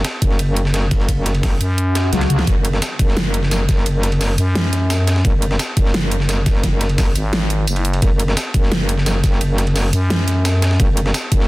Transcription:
0.05 snare, closed hi-hat, ride
0.22 F#1, kick, closed hi-hat, ride
0.31 snare
0.39 closed hi-hat, ride
0.57 closed hi-hat, ride
0.65 snare
0.74 snare, closed hi-hat, ride
0.91 kick, snare, closed hi-hat, ride
1.00 snare
1.09 kick, closed hi-hat, ride
1.26 snare, closed hi-hat, ride
1.35 ride
1.43 kick, snare, closed hi-hat, open hi-hat
1.61 F#2, closed hi-hat, ride
1.78 closed hi-hat, swell
1.95 snare, closed hi-hat, ride
2.13 C#2, snare, closed hi-hat, high tom, ride
2.21 snare, high tom, ride
2.30 closed hi-hat, mid tom
2.39 snare, ride
2.47 F#1, kick, closed hi-hat, ride
2.65 closed hi-hat, ride
2.73 snare
2.82 snare, closed hi-hat, ride, tambourine
2.99 F#1, kick, closed hi-hat, ride
3.08 snare
3.17 snare, closed hi-hat, ride
3.34 closed hi-hat, ride
3.43 snare
3.51 snare, closed hi-hat, ride, tambourine
3.69 kick, snare, closed hi-hat, ride, tambourine
3.77 snare
3.86 closed hi-hat, ride
4.03 snare, closed hi-hat, ride
4.12 ride
4.21 snare, closed hi-hat, open hi-hat, tambourine
4.38 F#2, closed hi-hat, ride, tambourine
4.55 snare, closed hi-hat, ride
4.64 snare
4.73 snare, closed hi-hat, ride
4.90 snare, closed hi-hat, ride, tambourine
5.07 snare, closed hi-hat, ride
5.16 snare
5.25 F#1, kick, closed hi-hat, ride
5.42 closed hi-hat, ride
5.51 snare
5.59 snare, closed hi-hat, ride, tambourine
5.77 F#1, kick, closed hi-hat, ride
5.85 snare
5.94 snare, closed hi-hat, ride
6.12 closed hi-hat, ride
6.20 snare
6.29 snare, closed hi-hat, ride, tambourine
6.46 kick, snare, closed hi-hat, ride, tambourine
6.55 snare
6.63 kick, snare, closed hi-hat, ride
6.81 snare, closed hi-hat, ride
6.89 ride
6.98 kick, snare, closed hi-hat, open hi-hat, tambourine
7.15 G#1, closed hi-hat, ride, tambourine
7.33 snare, closed hi-hat, ride
7.41 snare
7.50 closed hi-hat, ride
7.67 F#1, closed hi-hat, ride, tambourine
7.76 ride
7.85 closed hi-hat
7.94 ride
8.02 F#1, kick, closed hi-hat, ride
8.20 closed hi-hat, ride
8.28 snare
8.37 snare, closed hi-hat, ride, tambourine
8.54 F#1, kick, closed hi-hat, ride
8.63 snare
8.72 snare, closed hi-hat, ride
8.89 closed hi-hat, ride
8.98 snare
9.06 snare, closed hi-hat, ride, tambourine
9.24 kick, snare, closed hi-hat, ride, tambourine
9.32 snare
9.41 closed hi-hat, ride
9.58 snare, closed hi-hat, ride
9.67 ride
9.76 snare, closed hi-hat, open hi-hat, tambourine
9.93 F#2, closed hi-hat, ride, tambourine
10.10 snare, closed hi-hat, ride
10.19 snare
10.28 snare, closed hi-hat, ride
10.45 snare, closed hi-hat, ride, tambourine
10.62 snare, closed hi-hat, ride
10.71 snare
10.80 F#1, kick, closed hi-hat, ride
10.97 closed hi-hat, ride
11.06 snare
11.14 snare, closed hi-hat, ride, tambourine
11.32 F#1, kick, closed hi-hat, ride
11.40 snare

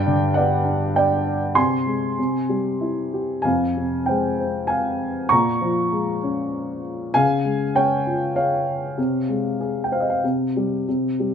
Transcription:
Already playing: G2 D5 G5
0.06 D3
0.34 B3 D5 F#5
0.64 D4
0.96 D5 G5
1.55 C3 G#5 C6
1.86 G#3
2.19 C3
2.49 G3
2.81 E4
3.14 G4
3.42 F2 F5 G#5
3.77 C3
4.06 G#3 C5 G5
4.40 C4
4.67 F5 G#5
5.29 A#2 A#5 C#6
5.61 F3
5.91 G#3
6.23 C#4
7.14 C#3 F5 G#5
7.44 G#3
7.75 C#4 C#5 G5
8.07 F4
8.36 C#5 F5
8.97 C3
9.28 G#3
9.61 G#4
9.84 G5
9.92 C5 F5
10.00 D#5
10.10 F5
10.24 C3
10.56 G3
10.88 C3
11.20 G3

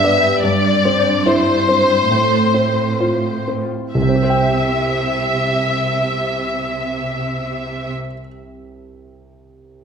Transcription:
Already playing: G2 B3 D4 G4 B4 D5 E5
0.04 B3 D5
0.17 G4
0.42 G2 D5
0.71 C4
0.85 C4 C5
0.98 C5
1.25 E4 C5
1.53 C5
1.68 C4 C5
1.81 E4
2.10 A2
2.39 C4
2.54 C4 C5
2.69 C5
3.00 F4 C5
3.31 C5
3.48 C4 C5
3.62 F4
3.94 C2 C3 E5
4.02 C3 C4
4.09 C4 G4
4.16 G4 C5
4.23 C5 G5
4.30 G5

